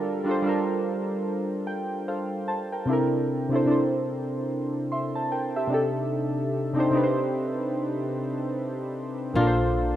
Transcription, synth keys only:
0.00 0.16 G3 medium
0.00 0.16 D4 medium
0.00 0.17 F4 medium
0.00 0.18 A4 medium
0.00 0.19 A#4 medium
0.24 0.40 G3 medium
0.24 0.41 D4 medium
0.24 0.41 F4 medium
0.29 0.42 A4 medium
0.29 0.43 C5 medium
0.42 1.84 G3 medium
0.42 1.85 D4 medium
0.42 1.86 F4 medium
0.47 1.87 A4 medium
0.47 1.88 A#4 medium
1.67 2.04 G5 medium
2.08 2.46 A4 soft
2.08 2.47 C5 medium
2.08 2.45 F5 medium
2.48 2.70 C5 medium
2.48 2.70 A5 medium
2.72 2.91 A#4 medium
2.72 3.10 G5 medium
2.85 3.40 C3 medium
2.85 3.41 C4 medium
2.85 3.41 D4 medium
2.89 3.42 E4 medium
2.89 3.43 A4 medium
2.89 3.43 A#4 medium
3.49 3.63 C3 medium
3.49 3.65 C4 medium
3.49 3.66 D4 medium
3.53 3.66 E4 medium
3.53 3.67 A4 medium
3.53 3.68 C5 medium
3.64 5.08 C3 medium
3.64 5.08 C4 medium
3.64 5.09 D4 medium
3.64 5.10 E4 medium
3.70 4.90 A4 medium
3.70 4.91 C5 medium
4.92 5.13 E5 soft
4.92 5.13 C6 medium
5.15 5.31 C5 soft
5.15 5.30 A5 medium
5.32 5.54 A#4 soft
5.32 5.54 G5 medium
5.56 5.72 G4 medium
5.56 5.94 E5 medium
5.67 6.56 C3 medium
5.67 6.57 C4 medium
5.67 6.58 D4 medium
5.67 6.58 D#4 medium
5.73 6.59 G4 medium
5.73 6.60 A4 medium
6.73 6.89 C3 medium
6.73 6.89 C4 medium
6.73 6.90 D4 medium
6.73 6.91 D#4 medium
6.79 6.91 G4 medium
6.79 6.92 C5 medium
6.90 8.33 C3 medium
6.90 8.33 C4 medium
6.90 8.34 D4 medium
6.90 8.35 D#4 medium
6.96 8.35 G4 medium
6.96 7.02 B4 medium
7.04 8.39 C5 medium
9.34 9.96 A#2 medium
9.34 9.96 A#3 medium
9.34 9.96 D4 medium
9.39 9.96 A4 medium
9.39 9.46 A#4 medium
9.47 9.96 C5 medium

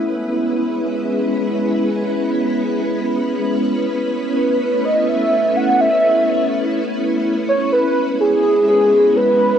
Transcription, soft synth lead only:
4.37 4.86 B4 medium
4.85 5.10 D#5 loud
5.09 5.58 E5 loud
5.57 5.82 F#5 loud
5.81 6.77 E5 loud
7.49 7.71 C#5 medium
7.73 8.17 B4 loud
8.21 8.65 G#4 medium
8.69 9.18 G#4 loud
9.17 9.59 B4 loud

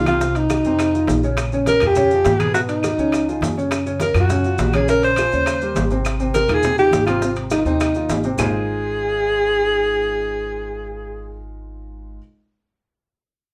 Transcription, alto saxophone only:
0.08 0.38 F4 medium
0.37 1.24 D#4 medium
1.68 1.88 A#4 medium
1.87 2.41 G4 loud
2.39 2.53 G#4 medium
2.54 2.61 F#4 medium
2.69 3.53 D#4 medium
4.02 4.19 A#4 medium
4.20 4.76 F#4 medium
4.75 4.89 G#4 medium
4.89 5.03 A#4 loud
5.04 5.87 C5 loud
6.34 6.55 A#4 medium
6.54 6.78 G#4 loud
6.79 7.05 G4 loud
7.06 7.34 F4 medium
7.52 7.65 D#4 medium
7.66 8.20 D#4 medium
8.40 11.48 G#4 loud

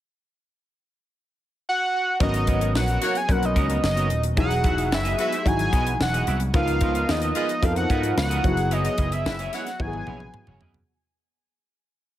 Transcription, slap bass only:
2.20 2.42 G#1 medium
2.48 2.75 G#1 medium
2.75 2.96 A#1 medium
3.29 3.56 B1 medium
3.56 3.77 C#2 medium
3.83 4.10 F#1 medium
4.10 4.31 D#1 medium
4.37 4.58 E1 loud
4.64 4.92 E1 medium
4.92 5.13 F#1 medium
5.46 5.67 G#1 medium
5.73 5.94 B1 medium
6.00 6.21 E1 medium
6.27 6.48 C2 medium
6.54 6.75 C#2 loud
6.81 7.02 C#2 medium
7.09 7.30 D#2 medium
7.63 7.84 F2 medium
7.90 8.11 G#2 medium
8.17 8.38 C#2 medium
8.44 8.87 F#1 medium
8.98 9.20 F#1 medium
9.25 9.47 F#1 medium
9.80 10.01 G#1 medium
10.07 10.28 A#1 medium
10.47 10.58 F#1 medium
10.61 10.82 F#2 medium

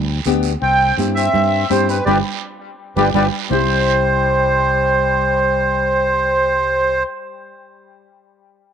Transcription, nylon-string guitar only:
0.26 0.52 B3 medium
0.26 0.52 D4 medium
0.26 0.52 G4 medium
0.98 1.24 C4 medium
0.98 1.24 E4 medium
0.98 1.24 G4 medium
1.70 1.96 C4 medium
1.70 1.96 E4 medium
1.70 1.96 G4 medium
2.07 2.19 D4 medium
2.07 2.19 F4 medium
2.07 2.19 G4 medium
2.98 3.09 D4 medium
2.98 3.09 F4 medium
2.98 3.09 G4 medium
3.16 3.27 D4 medium
3.16 3.27 F4 medium
3.16 3.27 G4 medium
3.49 7.01 C4 medium
3.49 7.03 E4 medium
3.49 7.05 G4 medium

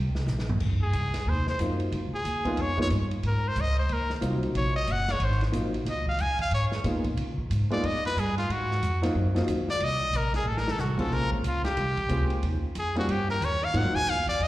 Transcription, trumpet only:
0.82 1.31 G#4 medium
1.29 1.48 C5 medium
1.49 1.60 C5 medium
2.15 2.63 G#4 medium
2.61 2.80 C#5 medium
2.82 2.88 C#5 medium
3.27 3.49 A#4 medium
3.48 3.62 C5 medium
3.61 3.78 D#5 medium
3.79 3.94 C5 medium
3.93 4.12 A#4 medium
4.57 4.75 C#5 medium
4.76 4.93 D#5 medium
4.92 5.13 F#5 medium
5.11 5.26 C#5 medium
5.24 5.43 C5 medium
5.90 6.07 D#5 medium
6.09 6.23 F5 medium
6.21 6.41 G#5 medium
6.41 6.52 F5 medium
6.55 6.66 C#5 medium
7.72 7.87 D5 medium
7.86 8.05 D#5 loud
8.06 8.21 B4 loud
8.19 8.38 G#4 medium
8.38 8.53 F4 medium
8.52 9.04 F#4 medium
9.70 9.85 D5 medium
9.84 10.18 D#5 loud
10.17 10.35 A#4 medium
10.36 10.50 G#4 medium
10.48 10.59 A4 medium
10.58 10.73 A#4 loud
10.71 10.82 A4 medium
10.80 10.99 F#4 medium
11.00 11.15 A4 medium
11.13 11.33 A#4 loud
11.33 11.48 C#4 medium
11.47 11.64 F4 medium
11.65 12.39 G4 medium
12.79 12.96 G#4 medium
12.99 13.13 F#4 medium
13.11 13.30 G4 medium
13.31 13.46 A#4 medium
13.45 13.66 C#5 medium
13.64 13.79 F5 medium
13.77 13.97 F#5 medium
13.95 14.11 G#5 loud
14.10 14.28 F5 loud
14.29 14.44 D5 loud
14.43 14.48 D#5 loud

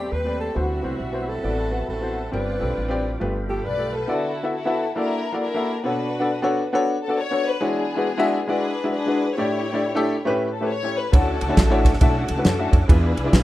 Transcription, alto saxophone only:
0.00 0.14 G4 medium
0.12 0.40 B4 medium
0.41 0.58 A4 medium
0.57 1.31 F#4 medium
1.29 1.89 A4 medium
1.90 2.30 A4 medium
2.33 3.17 B4 medium
3.50 3.67 G4 medium
3.66 3.97 B4 medium
3.95 4.10 A4 medium

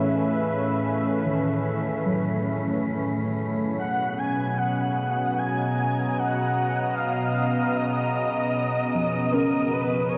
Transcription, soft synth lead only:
3.79 4.20 F#5 loud
4.18 4.59 G#5 medium
4.57 5.39 F#5 medium
5.38 6.20 G#5 loud
6.18 6.94 F#5 loud
6.95 7.77 F5 loud
7.76 9.33 D#5 loud
9.32 9.74 A#4 medium
9.72 10.10 B4 medium
10.09 10.18 C#5 loud

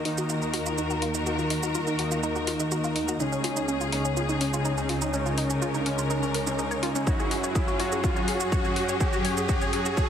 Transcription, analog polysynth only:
0.05 1.24 D#3 loud
0.05 1.24 A#3 medium
0.05 1.24 D#4 loud
1.26 1.96 D#3 medium
1.26 1.96 A#3 medium
1.26 1.96 D#4 medium
1.99 3.17 D#3 medium
1.99 3.17 A#3 medium
1.99 3.17 D#4 loud
3.20 3.90 C#3 medium
3.20 3.90 G#3 medium
3.20 3.90 C#4 medium
3.92 5.11 C#3 medium
3.92 5.11 G#3 medium
3.92 5.11 C#4 loud
5.13 5.83 C#3 medium
5.13 5.83 G#3 medium
5.13 5.83 C#4 medium
5.86 6.44 C#3 loud
5.86 6.44 G#3 medium
5.86 6.44 C#4 loud
6.47 7.04 C#3 medium
6.47 7.04 G#3 medium
6.47 7.04 C#4 medium
7.07 7.77 F#3 medium
7.07 7.77 C#4 medium
7.07 7.77 F#4 medium
7.80 8.98 F#3 medium
7.80 8.98 C#4 medium
7.80 8.98 F#4 loud
9.00 9.70 F#3 medium
9.00 9.70 C#4 medium
9.00 9.70 F#4 medium
9.73 10.09 F#3 medium
9.73 10.09 C#4 medium
9.73 10.09 F#4 loud

